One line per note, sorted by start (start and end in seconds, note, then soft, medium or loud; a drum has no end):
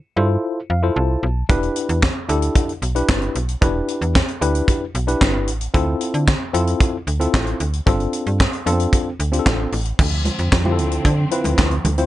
0.16 0.37 G2 medium
0.16 0.59 E4 medium
0.16 0.59 F4 medium
0.16 0.59 A4 medium
0.16 0.59 C5 loud
0.70 0.91 F2 medium
0.70 0.95 F5 medium
0.83 1.25 E4 medium
0.83 1.25 F4 medium
0.83 1.25 A4 medium
0.83 1.26 C5 medium
0.96 1.17 C2 loud
0.96 1.46 A5 medium
1.23 1.44 B1 loud
1.49 1.70 E1 medium
1.49 2.00 D4 medium
1.49 2.00 E4 medium
1.49 2.00 G4 medium
1.49 2.00 B4 loud
1.49 kick loud
1.49 closed hi-hat medium
1.63 closed hi-hat soft
1.76 closed hi-hat medium
1.89 2.10 E2 loud
1.89 closed hi-hat soft
2.03 kick loud
2.03 snare loud
2.03 clap medium
2.29 2.50 D2 medium
2.29 2.71 D4 medium
2.29 2.71 E4 medium
2.29 2.71 G4 medium
2.29 2.72 A4 loud
2.29 closed hi-hat medium
2.42 closed hi-hat medium
2.55 kick loud
2.55 closed hi-hat loud
2.69 closed hi-hat soft
2.82 3.03 B1 medium
2.82 closed hi-hat medium
2.95 3.38 D4 medium
2.95 3.38 E4 medium
2.95 3.38 G4 medium
2.95 3.38 B4 medium
2.95 closed hi-hat medium
3.09 3.30 G1 medium
3.09 kick loud
3.09 snare loud
3.09 clap medium
3.22 closed hi-hat soft
3.35 3.56 B1 medium
3.35 closed hi-hat medium
3.49 closed hi-hat medium
3.61 3.83 E1 loud
3.61 4.12 D4 medium
3.61 4.13 E4 medium
3.61 4.13 G4 medium
3.61 4.13 B4 medium
3.61 kick loud
3.61 closed hi-hat medium
3.88 closed hi-hat medium
4.01 4.22 E2 loud
4.01 closed hi-hat soft
4.15 kick loud
4.15 snare loud
4.15 clap medium
4.28 closed hi-hat soft
4.41 4.62 D2 medium
4.41 4.84 D4 loud
4.41 4.84 E4 medium
4.41 4.84 G4 medium
4.41 4.84 B4 loud
4.41 closed hi-hat medium
4.55 closed hi-hat medium
4.68 kick loud
4.68 closed hi-hat loud
4.95 5.15 B1 medium
4.95 closed hi-hat medium
5.07 5.50 D4 medium
5.07 5.50 E4 medium
5.07 5.50 G4 medium
5.07 5.50 B4 loud
5.07 closed hi-hat medium
5.21 5.49 G1 medium
5.21 kick loud
5.21 snare loud
5.21 clap medium
5.47 5.68 A1 medium
5.47 closed hi-hat medium
5.61 closed hi-hat medium
5.74 5.95 D2 loud
5.74 6.25 C4 loud
5.74 6.25 E4 medium
5.74 6.25 F4 medium
5.74 6.25 A4 loud
5.74 kick loud
5.74 closed hi-hat medium
6.01 closed hi-hat medium
6.14 6.35 D3 loud
6.14 closed hi-hat soft
6.28 kick loud
6.28 snare loud
6.28 clap medium
6.53 6.75 F2 medium
6.53 6.96 C4 medium
6.53 6.96 E4 medium
6.53 6.96 F4 medium
6.53 6.96 A4 loud
6.53 closed hi-hat medium
6.67 closed hi-hat medium
6.80 kick loud
6.80 closed hi-hat loud
7.07 7.28 D2 medium
7.07 closed hi-hat medium
7.20 7.62 C4 medium
7.20 7.62 E4 medium
7.20 7.63 F4 medium
7.20 7.63 A4 medium
7.20 closed hi-hat medium
7.34 7.54 A1 medium
7.34 kick loud
7.34 snare loud
7.34 clap medium
7.47 closed hi-hat soft
7.60 7.81 D2 medium
7.60 closed hi-hat medium
7.73 closed hi-hat soft
7.86 8.07 G1 loud
7.86 8.37 C4 medium
7.86 8.37 D4 medium
7.86 8.38 F4 medium
7.86 8.38 A4 loud
7.86 kick loud
7.86 closed hi-hat medium
8.00 closed hi-hat soft
8.13 closed hi-hat medium
8.26 8.47 G2 loud
8.26 closed hi-hat soft
8.40 kick loud
8.40 snare loud
8.40 clap medium
8.53 closed hi-hat soft
8.66 8.87 F2 loud
8.66 8.72 B3 medium
8.66 9.09 D4 medium
8.66 9.09 F4 medium
8.66 9.09 A4 loud
8.66 closed hi-hat medium
8.72 9.12 C4 medium
8.80 closed hi-hat medium
8.93 kick loud
8.93 closed hi-hat loud
9.20 9.40 D2 medium
9.20 closed hi-hat medium
9.32 9.75 C4 medium
9.32 9.75 D4 medium
9.32 9.75 F4 medium
9.32 9.39 G4 medium
9.32 closed hi-hat medium
9.39 9.78 A4 medium
9.46 9.67 A1 medium
9.46 kick loud
9.46 snare loud
9.46 clap medium
9.72 9.93 A1 medium
9.72 open hi-hat medium
9.85 closed hi-hat medium
9.99 10.30 D2 loud
9.99 12.06 D3 medium
9.99 12.06 F3 medium
9.99 12.06 C4 medium
9.99 kick loud
9.99 crash loud
9.99 muted conga soft
9.99 low conga medium
10.25 closed hi-hat medium
10.25 high conga medium
10.39 10.49 F2 medium
10.39 closed hi-hat soft
10.52 10.80 F2 loud
10.52 kick loud
10.52 snare loud
10.52 clap medium
10.52 muted conga soft
10.65 11.07 C4 medium
10.65 11.08 E4 medium
10.65 11.08 F4 medium
10.65 10.72 G4 medium
10.65 high conga medium
10.72 11.11 A4 medium
10.79 10.99 D2 medium
10.79 closed hi-hat medium
10.79 muted conga soft
10.92 closed hi-hat medium
11.05 11.26 D3 loud
11.05 kick loud
11.05 closed hi-hat loud
11.05 muted conga soft
11.31 11.74 C4 medium
11.31 11.74 E4 medium
11.31 11.74 F4 medium
11.31 11.74 B4 medium
11.31 closed hi-hat medium
11.44 11.55 D2 medium
11.44 closed hi-hat medium
11.44 high conga medium
11.58 11.79 D2 medium
11.58 kick loud
11.58 snare loud
11.58 clap medium
11.58 muted conga soft
11.58 high conga medium
11.71 closed hi-hat soft
11.85 12.05 D2 medium
11.85 closed hi-hat medium
11.85 high conga medium
11.85 low conga medium
11.98 12.06 C4 medium
11.98 12.06 E4 medium
11.98 12.06 F4 medium
11.98 12.06 C5 loud
11.98 closed hi-hat medium